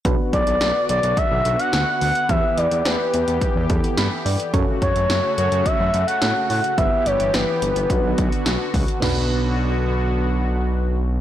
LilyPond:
<<
  \new Staff \with { instrumentName = "Analog synth lead" } { \time 4/4 \key b \minor \tempo 4 = 107 r8 d''4 d''8 e''8. fis''8. fis''8 | e''8 d''8 b'2 r4 | r8 cis''4 cis''8 e''8. fis''8. fis''8 | e''8 cis''8 b'2 r4 |
r1 | }
  \new Staff \with { instrumentName = "FM electric piano" } { \time 4/4 \key b \minor << { r1 | r2. b''8 d''8 | r1 | r1 |
r1 | } \\ { <b d' fis' b'>1 | <b e' g' b'>2~ <b e' g' b'>8 <b e' g' a'>4. | <cis' fis' a' cis''>2. <cis' fis' a' cis''>4 | <b e' g' b'>2 <b d' fis' b'>2 |
<b d' fis' b'>1 | } >> }
  \new Staff \with { instrumentName = "Analog synth pad" } { \time 4/4 \key b \minor << { <d fis'>1 | <e g'>1 | <cis fis'>1 | <e g'>2 <d fis'>2 |
<d b fis'>1 | } \\ { b1~ | b1 | a1 | b1 |
r1 | } >> }
  \new Staff \with { instrumentName = "Analog synth bass" } { \clef bass \time 4/4 \key b \minor b,,16 r16 b,,16 b,,16 b,,16 r16 b,,16 b,,16 r16 b,,16 b,,16 r16 d,16 r16 d,16 r16 | e,16 r16 e,16 e,16 e,16 r16 e,16 e,16 r16 e,16 e,16 r16 g,16 r16 g,16 r16 | fis,16 r16 fis,16 fis,16 fis,16 r16 fis,16 fis,16 r16 fis,16 fis,16 r16 a,16 r16 a,16 r16 | g,,16 r16 g,,16 g,,16 g,,16 r16 g,,16 g,,16 b,,16 b,,16 b,,16 r16 b,,16 r16 cis,16 r16 |
b,,1 | }
  \new DrumStaff \with { instrumentName = "Drums" } \drummode { \time 4/4 <hh bd>8 <hh bd>16 hh16 <hh sn>8 hh16 hh16 <hh bd>8 hh16 hh16 <hh sn>8 hho16 hh16 | <hh bd>8 hh16 hh16 <hh sn>8 hh16 hh16 <hh bd>8 <hh bd>16 hh16 <hh sn>8 hho16 hh16 | <hh bd>8 <hh bd>16 hh16 <hh sn>8 hh16 hh16 <hh bd>8 hh16 hh16 <hh sn>8 hho16 hh16 | <hh bd>8 hh16 hh16 <hh sn>8 hh16 hh16 <hh bd>8 <hh bd>16 hh16 <hh sn>8 <hho bd>16 hh16 |
<cymc sn tomfh>4 r4 r4 r4 | }
>>